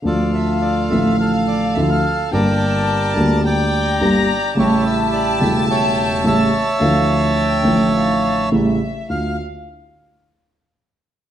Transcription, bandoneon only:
\new Staff \with { instrumentName = "Bandoneon" } { \time 4/4 \key d \minor \tempo 4 = 106 << { d''8 e''8 d''8 e''8 f''8 d''8 e''16 f''8. | g''4. a''8 bes''4. r8 | cis''8 e''8 d''8 e''8 g''4 a''4~ | a''2. r4 |
f''8 r2. r8 | } \\ { <f' a'>2 a'4~ a'16 a'8. | <bes' d''>2 <d'' g''>2 | <e' g'>2 <cis'' e''>4 <cis'' e''>4~ | <cis'' e''>2. r4 |
r1 | } >> }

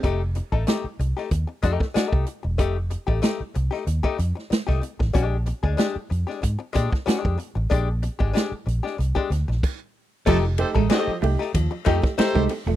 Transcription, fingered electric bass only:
\new Staff \with { instrumentName = "Fingered electric bass" } { \clef bass \time 4/4 \key f \mixolydian \tempo 4 = 94 f,,8. a,,16 r8 c,16 r16 ees,16 r16 f,16 r8 c,16 r16 e,,16 | f,,8. a,,16 r8 c,16 r16 ees,16 r16 f,16 r8 c,16 r16 a,,16 | bes,,8. d,16 r8 f,16 r16 aes,16 r16 bes,16 r8 f,16 r16 a,,16 | bes,,8. aes,,16 r8 bes,,16 r16 c,16 r16 d,16 bes,,16 r4 |
f,,8. a,,16 r8 c,16 r16 ees,16 r16 f,16 r8 c,16 r16 e,,16 | }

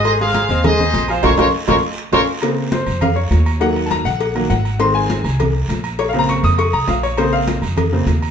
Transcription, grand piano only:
<<
  \new Staff \with { instrumentName = "Grand piano" } { \time 4/4 \key bes \minor \tempo 4 = 202 <aes aes' aes''>8 <aes aes' aes''>4 <c' c'' ees''>8 <aes aes' aes''>8 <c' c'' ees''>4 <f f' f''>8 | <des' f' bes'>8 <des' f' bes'>8 r8 <des' f' bes'>8 r4 <des' f' bes'>8 r8 | r4 c''4 f''8 des''4. | ges''4 <a'' bes''>8 ges''4. ges''4 |
c'''8 aes''4. r2 | \tuplet 3/2 { des''8 f''8 bes''8 } des'''8 ees'''8 des'''8 bes''8 f''8 des''8 | c''8 f''8 r2. | }
  \new Staff \with { instrumentName = "Grand piano" } { \time 4/4 \key bes \minor r1 | r1 | <des bes c'>4. r2 r8 | <ees ges bes>4. r4 <ees ges bes>8 r4 |
<ees aes c'>4. r2 r8 | r8 <des bes c'>4. r2 | <des bes c'>4. r4 <des bes c'>8 r4 | }
>>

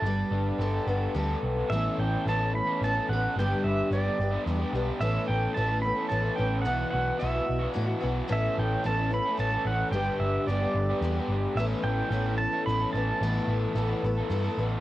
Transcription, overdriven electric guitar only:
\new Staff \with { instrumentName = "Overdriven electric guitar" } { \time 3/4 \key a \mixolydian \tempo 4 = 109 g8 d'8 a'8 b8 a'8 b8 | <a, e a cis' a'>8 <e a cis' a'>8 <a, e a cis' a'>16 <a cis' a'>8 <a cis' a'>8 <a cis' a'>16 <e a cis' a'>8 | <g, d g b d' g'>8 <g b d' g'>8 <g, d g b d' g'>16 <g b d' g'>8 <g b d' g'>8 <g b d' g'>16 <g b d' g'>8 | <a, e a cis' a'>8 <e a cis' a'>8 <a, e a cis' a'>16 <a cis' a'>8 <a cis' a'>8 <a cis' a'>16 <e a cis' a'>8 |
<b, e b e' fis'>8 <e b e' fis'>8 <b, e b e' fis'>16 <b e' fis'>8 <b e' fis'>8 <b e' fis'>16 <e b e' fis'>8 | <a, e a cis' a'>8 <e a cis' a'>8 <a, e a cis' a'>16 <a cis' a'>8 <a cis' a'>8 <a cis' a'>16 <e a cis' a'>8 | <g, d g b d' g'>8 <g b d' g'>8 <g, d g b d' g'>16 <g b d' g'>8 <g b d' g'>8 <g b d' g'>16 <g b d' g'>8 | <a, e a cis' a'>8 <e a cis' a'>8 <a, e a cis' a'>16 <a cis' a'>8 <a cis' a'>8 <a cis' a'>16 <e a cis' a'>8 |
<a, e a b a'>8 <e a b a'>8 <a, e a b a'>16 <a b a'>8 <a b a'>8 <a b a'>16 <e a b a'>8 | }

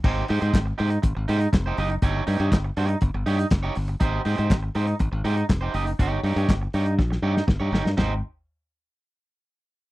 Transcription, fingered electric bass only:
\new Staff \with { instrumentName = "Fingered electric bass" } { \clef bass \time 4/4 \key aes \major \tempo 4 = 121 aes,,8 aes,16 aes,16 aes,,8 aes,8 aes,,16 aes,,16 aes,8 f,,8 ges,,8 | g,,8 g,16 g,16 g,,8 g,8 g,,16 g,,16 g,8 ges,,8 g,,8 | aes,,8 aes,16 aes,16 aes,,8 aes,8 aes,,16 aes,,16 aes,8 f,,8 ges,,8 | g,,8 g,16 g,16 g,,8 g,8 bes,,8 g,8 g,,16 g,16 g,,16 g,16 |
aes,,8 r2. r8 | }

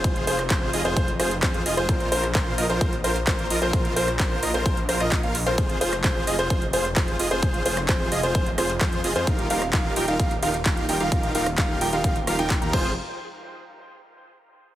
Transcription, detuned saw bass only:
\new Staff \with { instrumentName = "Detuned saw bass" } { \clef bass \time 4/4 \key f \minor \tempo 4 = 130 f,,8 f,,8 f,,8 f,,16 f,,16 f,,8 f,,8 f,8 f,,16 f,,16 | bes,,8 bes,,8 bes,,8 bes,,16 bes,,16 bes,,8 bes,,8 bes,,8 bes,,16 bes,,16 | bes,,8 bes,,8 bes,,8 bes,,16 bes,,16 bes,,8 bes,,16 bes,,8 bes,,8 bes,,16 | f,,8 f,,8 f,,8 f,,16 f,,16 f,,8 f,,8 f,,8 f,,16 f,,16 |
f,,8 f,,8 f,,8 f,,16 f,,16 f,,8 f,,8 f,8 f,,16 f,16 | ees,,8 ees,,8 ees,,8 ees,,16 ees,,16 ees,,8 ees,,8 ees,,8 ees,,16 ees,,16 | ees,,8 ees,,8 ees,,8 ees,,16 ees,,16 ees,,8 ees,,16 ees,,8 ees,16 f,,8 | r1 | }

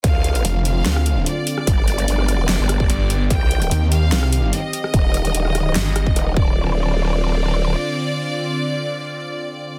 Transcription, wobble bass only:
\new Staff \with { instrumentName = "Wobble bass" } { \clef bass \time 4/4 \key d \phrygian \tempo 4 = 147 d,4 r2. | g,,4 g,,4 f,,16 g,,8. r4 | c,4 r2. | ees,,4 ees,,4 r4 ees,,8 d,,8~ |
d,,2. r4 | r1 | }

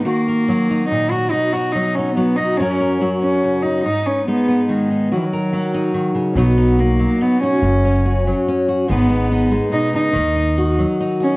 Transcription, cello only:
\new Staff \with { instrumentName = "Cello" } { \time 3/4 \key b \major \tempo 4 = 143 ais2 dis'8 fis'8 | dis'8 fis'8 dis'8 cis'8 b8 dis'8 | cis'4 r8 cis'4 dis'8 | dis'8 cis'8 b4 gis4 |
\tuplet 3/2 { fis16 e16 fis4~ } fis4. r8 | b4 ais4 b8 cis'8~ | cis'4. r4. | b4. r8 dis'8 dis'8~ |
dis'4. r4 cis'8 | }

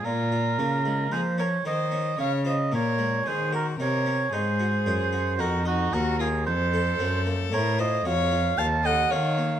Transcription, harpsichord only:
<<
  \new Staff \with { instrumentName = "Harpsichord" } { \time 3/4 \key bes \minor \tempo 4 = 56 r16 f'16 bes16 aes16 bes16 des'16 ees'16 des'16 r16 f'16 bes16 aes16 | r16 bes'16 ees'16 des'16 ees'16 ges'16 aes'16 ges'16 ees'16 ees''16 ges'16 bes'16 | r16 a'16 c'16 bes16 c'16 f'16 ges'16 f'16 r16 a'16 c'16 bes16 | }
  \new Staff \with { instrumentName = "Harpsichord" } { \clef bass \time 3/4 \key bes \minor bes,8 des8 f8 ees8 des8 bes,8 | ees8 c8 aes,8 ges,8 f,8 ees,8 | f,8 ges,8 a,8 f,8 ees,8 ees8 | }
>>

